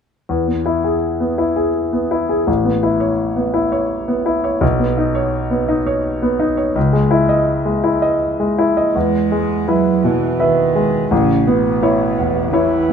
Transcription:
0.29 E2
0.47 B3
0.66 E4
0.84 G#4
1.20 B3
1.38 E4
1.56 G#4
1.93 B3
2.11 E4
2.29 G#4
2.47 A1
2.65 B3
2.83 E4
3.00 C#5
3.36 B3
3.54 E4
3.72 C#5
4.08 B3
4.26 E4
4.44 C#5
4.61 B1
4.79 B3
4.98 D#4
5.15 C#5
5.50 B3
5.68 D#4
5.87 C#5
6.22 B3
6.39 D#4
6.57 C#5
6.76 C#2
6.93 G#3
7.11 E4
7.29 D#5
7.65 G#3
7.84 E4
8.02 D#5
8.40 G#3
8.59 E4
8.77 D#5
8.95 E2 G#3
9.32 G#3
9.68 F#3 E4 B4
10.04 B2 E3
10.40 D#3 B4 E5
10.75 G#3
11.11 A1 C#3
11.47 B2 B3
11.83 E4 C#5
12.19 E2
12.53 E3 E4 C#5
12.89 B3

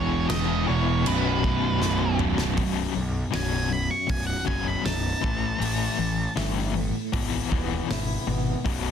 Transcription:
Already playing: E1 E2 B2 E3 C#5
0.29 E1 E2 B2 E3 D#5, snare, crash
0.67 E1 E2 B2 E3 C#5
1.06 B0 B1 F#2 B2 B4, crash
1.43 B1 F#2 B2, kick
1.81 B0 B1 F#2 B2, snare
2.18 B0 B1 F#2 B2, mid tom
2.38 snare
2.56 B0 B1 F#2 B2, kick, open hi-hat
2.94 B1 F#2
3.31 B0 B1 F#2 B2 F#3, snare, open hi-hat
3.35 G#5
3.69 B1 F#2 B5
3.90 C#6
4.07 B0 B1 F#2 B2 G#5, kick, open hi-hat
4.27 F#5
4.45 F#1 B1 F#2 B2 F#3 G#5, kick
4.68 B5
4.83 B0 B1 F#2 D#4 A5, snare, open hi-hat
5.21 A1 A2 E3 A3, kick
5.59 A1 A2 E3 A3, open hi-hat
5.99 A1 A2 E3
6.36 G1 A2 E3 A3 E4, snare, open hi-hat
6.73 A2 E3 A3
7.12 G#1 E2 B2 E3, kick, open hi-hat
7.50 D#1 E2 B2 E3 B3, kick
7.88 G#1 E2 B2 E4, snare, open hi-hat
8.27 G#1 E2 B2 B3
8.64 B0 B1 F#2 B2, kick, open hi-hat

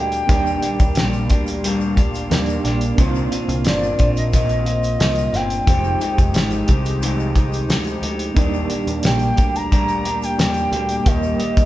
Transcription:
Already playing: D2 A#2 G3 A#3 D4 G4 A#4 G5
0.00 A#3
0.12 closed hi-hat, shaker
0.26 D#2 D#3 G3 A#3 D4 D#4 F4 G4, kick, closed hi-hat, shaker
0.30 G4 D5
0.46 shaker
0.62 A#3 D4 G4, closed hi-hat, shaker
0.80 D#2, kick, closed hi-hat, shaker
0.95 A#1 G3 A#3 D4 G4, snare, closed hi-hat, shaker
1.13 shaker
1.29 D2 D4 G4, kick, closed hi-hat, shaker
1.33 A#3
1.46 closed hi-hat, shaker
1.64 G3 A#3 D4 G4, closed hi-hat, shaker
1.81 shaker
1.96 A#3 D4 G4, kick, closed hi-hat, shaker
2.14 closed hi-hat, shaker
2.30 D#2 G3 A#3 D4 D#4 G4 D5, snare, closed hi-hat, shaker
2.34 G4
2.46 closed hi-hat, shaker
2.64 A#1 A#3 D4 G4, snare, closed hi-hat
2.81 closed hi-hat, shaker
2.96 C2 C3 D#3 A#3 C4 D4 D#4 F4, kick, closed hi-hat, shaker
3.00 F4 C5
3.15 shaker
3.31 D4 F4, closed hi-hat, shaker
3.35 A#3
3.48 C2, closed hi-hat, shaker
3.64 G1 D#3 A#3 D4 D5, snare, closed hi-hat, shaker
3.68 F4
3.83 shaker
3.98 A#1 A#3 D4 F4, kick, closed hi-hat, shaker
4.16 D#5, closed hi-hat, shaker
4.32 C3 D#3 A#3 F4 D#5, kick, closed hi-hat, shaker
4.49 closed hi-hat, shaker
4.66 A#3 F4, closed hi-hat, shaker
4.83 closed hi-hat, shaker
4.99 C2 D#3 A#3 F4, snare, closed hi-hat, shaker
5.15 closed hi-hat, shaker
5.33 G1 A#3 D4 F4 G5, snare, closed hi-hat
5.50 closed hi-hat, shaker
5.65 F1 F2 C3 D#3 F3 G#3 D#4 F4 G4, kick, closed hi-hat, shaker
5.69 G4 C5
5.84 shaker
6.00 D#3 G#3 D#4 G4, closed hi-hat, shaker
6.18 F1, kick, closed hi-hat, shaker
6.34 G#1 D#3 G#3 D#4 G4, snare, closed hi-hat, shaker
6.50 closed hi-hat, shaker
6.67 C2 D#3 G#3 D#4 G4, kick, closed hi-hat, shaker
6.85 closed hi-hat, shaker
7.01 F2 C3 D#3 G#3 D#4 G4, closed hi-hat, shaker
7.19 shaker
7.34 G#3 D#4 G4, kick, closed hi-hat, shaker
7.38 D#3
7.52 closed hi-hat, shaker
7.69 D2 G#3 D#4 G4, snare, closed hi-hat, shaker
7.85 closed hi-hat, shaker
8.02 D2 G#3 D#4 G4, closed hi-hat
8.19 closed hi-hat, shaker
8.34 D#2 A#2 D#3 G3 A#3 D4 D#4 G4, kick, closed hi-hat, shaker
8.38 G4 D5
8.53 shaker
8.69 A#3 D4 G4, closed hi-hat, shaker
8.87 D#2, closed hi-hat, shaker
9.03 A#1 G3 A#3 D4 G4 G5, snare, closed hi-hat, shaker
9.19 closed hi-hat, shaker
9.36 D2 A#3 D4 G4, kick, closed hi-hat, shaker
9.55 A#5, closed hi-hat, shaker
9.71 G3 A#3 D4 G4 A#5, kick, closed hi-hat, shaker
9.88 closed hi-hat, shaker
10.04 D4 G4, closed hi-hat, shaker
10.08 A#3
10.22 G5, closed hi-hat, shaker
10.37 D#2 G3 A#3 D4 G4 G5, snare, closed hi-hat, shaker
10.54 closed hi-hat, shaker
10.71 D2 A#3 D4 G4, closed hi-hat
10.89 closed hi-hat, shaker
11.03 D#2 D#3 G3 A#3 D#4 G4, kick, closed hi-hat, shaker
11.07 G4 A#4 D#5
11.23 shaker
11.38 G4, closed hi-hat, shaker
11.42 A#3
11.57 D#2, kick, closed hi-hat, shaker

